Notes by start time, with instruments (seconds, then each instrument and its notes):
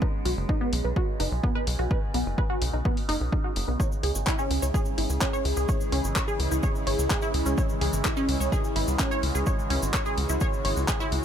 Already playing: synth drone C#3 G#3
0.02 synth pluck B4, kick
0.25 analog synth bass B1, synth pluck F#4, open hi-hat
0.37 analog synth bass F#1
0.49 synth pluck D#4, kick
0.61 synth pluck B3
0.73 analog synth bass B1, open hi-hat
0.84 analog synth bass B1, synth pluck B4
0.96 synth pluck F#4, kick
1.20 analog synth bass F#1, synth pluck D#4, open hi-hat
1.32 analog synth bass B1
1.44 synth pluck B3, kick
1.55 synth pluck B4
1.67 analog synth bass B1, open hi-hat
1.79 analog synth bass B1, synth pluck F#4
1.91 synth pluck B4, kick
2.14 analog synth bass B1, synth pluck B3, open hi-hat
2.26 analog synth bass F#1
2.38 synth pluck B4, kick
2.50 synth pluck F#4
2.62 analog synth bass B1, open hi-hat
2.73 analog synth bass B1, synth pluck D#4
2.85 synth pluck B3, kick
2.97 open hi-hat
3.09 analog synth bass F#1, synth pluck D#4, open hi-hat
3.21 analog synth bass B1
3.32 synth pluck D#4, kick
3.44 synth pluck F#4
3.56 analog synth bass F#1, open hi-hat
3.68 analog synth bass B1, synth pluck B3
3.80 ambient pad C#3 E3 G#3 E4 G#4, synth drone C#3 G#3, synth pluck C#5, kick, cabasa
3.92 cabasa
4.03 analog synth bass C#2, synth pluck G#4, open hi-hat
4.15 analog synth bass G#1, cabasa
4.27 synth pluck E4, kick, clap, cabasa
4.39 synth pluck C#4, cabasa
4.51 analog synth bass C#2, open hi-hat
4.62 analog synth bass C#2, synth pluck C#5, cabasa
4.74 synth pluck G#4, kick, cabasa
4.85 cabasa
4.98 analog synth bass G#1, synth pluck E4, open hi-hat
5.10 analog synth bass C#2, cabasa
5.21 synth pluck C#4, kick, clap, cabasa
5.33 synth pluck C#5, cabasa
5.45 analog synth bass C#2, open hi-hat
5.56 analog synth bass C#2, synth pluck G#4, cabasa
5.69 synth pluck C#5, kick, cabasa
5.81 cabasa
5.92 analog synth bass C#2, synth pluck C#4, open hi-hat
6.04 analog synth bass G#1, cabasa
6.16 synth pluck C#5, kick, clap, cabasa
6.28 synth pluck G#4, cabasa
6.40 analog synth bass C#2, open hi-hat
6.51 analog synth bass C#2, synth pluck E4, cabasa
6.63 synth pluck C#5, kick, cabasa
6.75 cabasa
6.87 analog synth bass G#1, synth pluck C#5, open hi-hat
6.99 analog synth bass C#2, cabasa
7.10 synth pluck G#4, kick, clap, cabasa
7.22 synth pluck E4, cabasa
7.34 analog synth bass C#2, open hi-hat
7.46 analog synth bass C#2, synth pluck C#4, cabasa
7.58 ambient pad F#4, synth pluck C#5, kick, cabasa
7.69 cabasa
7.81 analog synth bass C#2, synth pluck G#4, open hi-hat
7.93 analog synth bass G#1, cabasa
8.04 synth pluck E4, kick, clap, cabasa
8.17 synth pluck C#4, cabasa
8.29 analog synth bass C#2, open hi-hat
8.40 analog synth bass C#2, synth pluck C#5, cabasa
8.52 synth pluck G#4, kick, cabasa
8.64 cabasa
8.76 analog synth bass G#1, synth pluck E4, open hi-hat
8.88 analog synth bass C#2, cabasa
8.99 synth pluck C#4, kick, clap, cabasa
9.11 synth pluck C#5, cabasa
9.23 analog synth bass C#2, open hi-hat
9.35 analog synth bass C#2, synth pluck G#4, cabasa
9.46 synth pluck C#5, kick, cabasa
9.59 cabasa
9.70 analog synth bass C#2, synth pluck C#4, open hi-hat
9.82 analog synth bass G#1, cabasa
9.94 synth pluck C#5, kick, clap, cabasa
10.06 synth pluck G#4, cabasa
10.18 analog synth bass C#2, open hi-hat
10.29 analog synth bass C#2, synth pluck E4, cabasa
10.41 synth pluck C#5, kick, cabasa
10.53 cabasa
10.65 analog synth bass G#1, synth pluck C#5, open hi-hat
10.77 analog synth bass C#2, cabasa
10.88 synth pluck G#4, kick, clap, cabasa
11.00 synth pluck E4, cabasa
11.12 analog synth bass C#2, open hi-hat